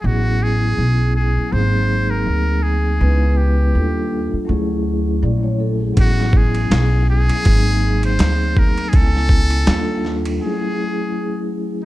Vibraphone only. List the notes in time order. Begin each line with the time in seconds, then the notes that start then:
0.01 F#3 B3 C#4
0.06 E4 G#4
1.50 F#3 A#3 C4
1.54 D#4 G#4
2.99 G#3 B3 C#4 D#4 B4
3.08 E4
3.73 G3 A#3 D4 F4 A4
4.45 F#3 A3 C#4
4.49 E4 G#4
5.23 D5
5.43 C#5
5.60 A4
5.80 G#4
5.94 F#3 B3 C#4
5.98 E4 G#4
7.42 F#3 A#3 C4
7.46 D#4 G#4
8.92 B3 C#4 E4 G#5
9.65 G3 A#3 D4 F4 A4
10.38 F#3 A3 C#4
10.42 E4 G#4